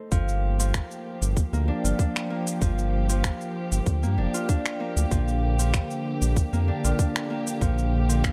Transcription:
Already playing: harp A3 D#4 A4 C5
0.11 analog synth bass G1, harp F3, string section F3 A#3 G4, kick, open hi-hat, cabasa
0.29 cabasa
0.59 harp F3, open hi-hat, cabasa
0.74 finger snap, kick, open hi-hat, cabasa
0.91 cabasa
1.22 analog synth bass G1, open hi-hat, cabasa
1.37 kick, open hi-hat, cabasa
1.53 analog synth bass D2, harp A#3, cabasa
1.68 harp D4
1.84 analog synth bass G1, harp F4, open hi-hat, cabasa
1.99 harp D4, kick, open hi-hat, cabasa
2.16 finger snap, cabasa
2.30 harp A#3
2.47 open hi-hat, cabasa
2.61 analog synth bass G1, harp F3, kick, open hi-hat, cabasa
2.79 cabasa
3.09 harp F3, open hi-hat, cabasa
3.24 finger snap, kick, open hi-hat, cabasa
3.41 cabasa
3.72 analog synth bass G1, open hi-hat, cabasa
3.86 analog synth bass D2, kick, open hi-hat, cabasa
4.03 analog synth bass G2, harp A#3, cabasa
4.17 analog synth bass F1, harp D4
4.34 harp F4, open hi-hat, cabasa
4.49 harp D4, kick, open hi-hat, cabasa
4.66 finger snap, cabasa
4.80 harp A#3
4.97 analog synth bass D2, open hi-hat, cabasa
5.11 analog synth bass A#1, string section D3, harp F3, kick, open hi-hat, cabasa
5.28 cabasa
5.59 harp F3, open hi-hat, cabasa
5.74 finger snap, kick, open hi-hat, cabasa
5.91 cabasa
6.22 analog synth bass A#1, open hi-hat, cabasa
6.36 kick, open hi-hat, cabasa
6.53 analog synth bass F2, harp A#3, cabasa
6.68 harp D4
6.84 analog synth bass A#1, harp F4, open hi-hat, cabasa
6.99 harp D4, kick, open hi-hat, cabasa
7.16 finger snap, cabasa
7.30 harp A#3
7.47 open hi-hat, cabasa
7.61 analog synth bass A#1, harp F3, kick, open hi-hat, cabasa
7.78 cabasa
8.09 harp F3, open hi-hat, cabasa
8.24 finger snap, kick, open hi-hat, cabasa

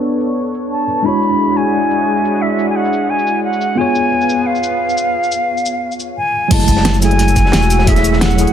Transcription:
Already playing: tine electric piano B3 D4 A4 C#5, analog synth pad B3 D4 A4 C#5
0.12 shaker
0.20 shaker
0.46 shaker
0.54 shaker
0.71 flute A5
0.80 shaker
0.88 shaker
1.02 tine electric piano G#3 D4 E4, analog synth pad G#3 D4 E4 F#4, flute B5
1.07 tine electric piano F#4 C#5
1.23 shaker
1.49 shaker
1.57 flute G#5, shaker
1.83 shaker
1.91 shaker
2.17 shaker
2.25 shaker
2.42 flute E5
2.59 shaker
2.69 flute G#5
2.76 flute F#5
2.85 shaker
2.93 shaker
3.10 flute G#5
3.19 shaker
3.27 shaker
3.44 flute F#5
3.53 shaker
3.61 shaker
3.75 tine electric piano B3 F4 G#4, analog synth pad B3 F4, flute G#5
3.81 tine electric piano C#5
3.95 shaker
4.21 shaker
4.29 shaker
4.46 flute F5
4.55 shaker
4.63 shaker
4.89 shaker
4.97 shaker
5.23 shaker
5.32 shaker
5.58 shaker
5.66 shaker
5.92 shaker
6.00 shaker
6.17 flute G#5
6.48 sub bass F#1, tine electric piano F#3 A3 E4, analog synth pad F#3 F#4 E5, flute A5, kick, closed hi-hat, crash
6.54 tine electric piano G#3
6.60 snare, closed hi-hat
6.68 kick, closed hi-hat, shaker
6.77 snare
6.85 snare, closed hi-hat
6.94 shaker
6.99 tine electric piano F#3 A3 E4, flute G#5, closed hi-hat, shaker
7.05 tine electric piano G#4
7.11 closed hi-hat
7.19 closed hi-hat
7.28 closed hi-hat, shaker
7.36 kick, closed hi-hat, shaker
7.46 snare
7.52 sub bass E1, snare, closed hi-hat
7.62 shaker
7.70 closed hi-hat, shaker
7.79 snare
7.85 tine electric piano F#3 A3 E4, flute E5, kick, closed hi-hat
7.90 tine electric piano G#4
7.96 snare, closed hi-hat, shaker
8.04 closed hi-hat, shaker
8.13 snare
8.21 flute F#5, snare, closed hi-hat
8.30 shaker
8.36 tine electric piano F#3 A3 E4, closed hi-hat, shaker
8.41 tine electric piano G#4
8.47 closed hi-hat

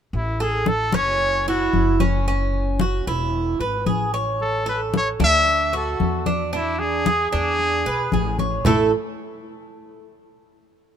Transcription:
0.13 upright bass A1, trumpet E4, high conga
0.40 trumpet G#4, cuban tres A4, high conga
0.66 trumpet A4, high conga
0.92 upright bass F#1, cuban tres C#4, trumpet C#5, high conga
1.19 high conga
1.46 cuban tres E4, trumpet F#4, high conga
1.73 upright bass F#1, high conga
2.00 cuban tres C#4, high conga
2.27 cuban tres C#4, high conga
2.54 high conga
2.79 cuban tres F#4, high conga
3.07 upright bass E1, cuban tres E4, high conga
3.34 high conga
3.60 upright bass G#1, cuban tres B4, high conga
3.86 upright bass A1, cuban tres G#4, high conga
4.14 cuban tres C#5
4.40 trumpet A4, high conga
4.66 cuban tres A4, trumpet B4, high conga
4.94 trumpet C#5, high conga
5.20 upright bass D2, cuban tres D4, high conga
5.24 trumpet E5
5.47 high conga
5.73 cuban tres F#4, trumpet A4, high conga
6.00 upright bass E2, high conga
6.26 cuban tres D4, high conga
6.53 cuban tres D4, trumpet E4, high conga
6.79 trumpet G#4, high conga
7.06 cuban tres G#4, high conga
7.31 upright bass E2, cuban tres D4, trumpet G#4, high conga
7.59 high conga
7.86 upright bass B1, cuban tres B4, high conga
8.12 upright bass A1, cuban tres G#4, high conga
8.39 cuban tres C#5, high conga
8.65 upright bass A1, cuban tres A3 E4 A4, trumpet A4, low conga

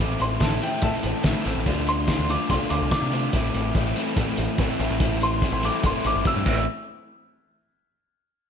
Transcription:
Already playing: upright piano D6
0.00 picked electric bass A1, overdriven electric guitar A2 E3 A3 C4 E4
0.20 picked electric bass A1, upright piano C6, closed hi-hat
0.40 picked electric bass A1, overdriven electric guitar A2 E3 A3 C4 E4, upright piano A5, kick, snare, closed hi-hat
0.62 overdriven electric guitar A2 E3 A3 C4 E4, upright piano G5, closed hi-hat
0.82 picked electric bass A2, overdriven electric guitar A2 E3 A3 C4 E4, upright piano E5 A5, kick, closed hi-hat
1.03 picked electric bass A1, closed hi-hat
1.24 picked electric bass A1, overdriven electric guitar A2 E3 A3 C4 E4, kick, snare, closed hi-hat
1.45 picked electric bass A1, overdriven electric guitar A2 E3 A3 C4 E4, closed hi-hat
1.57 picked electric bass A1
1.66 picked electric bass D2, overdriven electric guitar D3 A3 D4 F4, kick, closed hi-hat
1.87 upright piano C6, closed hi-hat
2.07 overdriven electric guitar D3 A3 D4 F4, kick, snare, closed hi-hat
2.19 picked electric bass D2
2.29 overdriven electric guitar D3 A3 D4 F4, upright piano D6, closed hi-hat
2.50 picked electric bass C2, overdriven electric guitar D3 A3 D4 F4, upright piano C6, kick, closed hi-hat
2.70 picked electric bass D2, upright piano D6, closed hi-hat
2.81 picked electric bass C2
2.91 overdriven electric guitar D3 A3 D4 F4, upright piano D6, kick, snare, closed hi-hat
3.03 picked electric bass C3
3.12 overdriven electric guitar D3 A3 D4 F4, closed hi-hat
3.33 picked electric bass A1, overdriven electric guitar A2 E3 A3 C4 E4, kick, closed hi-hat
3.54 picked electric bass A1, closed hi-hat
3.75 picked electric bass A1, overdriven electric guitar A2 E3 A3 C4 E4, kick, closed hi-hat
3.96 overdriven electric guitar A2 E3 A3 C4 E4, closed hi-hat
4.17 picked electric bass A2, overdriven electric guitar A2 E3 A3 C4 E4, kick, closed hi-hat
4.37 picked electric bass A1, closed hi-hat
4.58 picked electric bass A1, overdriven electric guitar A2 E3 A3 C4 E4, kick, closed hi-hat
4.80 picked electric bass A1, overdriven electric guitar A2 E3 A3 C4 E4, closed hi-hat
4.90 picked electric bass A1
5.00 picked electric bass A1, overdriven electric guitar A2 E3 A3 C4 E4, kick, closed hi-hat
5.21 upright piano C6, closed hi-hat
5.42 overdriven electric guitar A2 E3 A3 C4 E4, kick, closed hi-hat
5.52 picked electric bass A1
5.63 overdriven electric guitar A2 E3 A3 C4 E4, upright piano D6, closed hi-hat
5.83 picked electric bass G1, overdriven electric guitar A2 E3 A3 C4 E4, upright piano C6, kick, closed hi-hat
6.04 picked electric bass A1, upright piano D6, closed hi-hat
6.15 picked electric bass G1
6.25 overdriven electric guitar A2 E3 A3 C4 E4, upright piano E6, kick, closed hi-hat
6.36 picked electric bass G2
6.46 picked electric bass A1, overdriven electric guitar A2 E3 A3 C4 E4, kick, crash

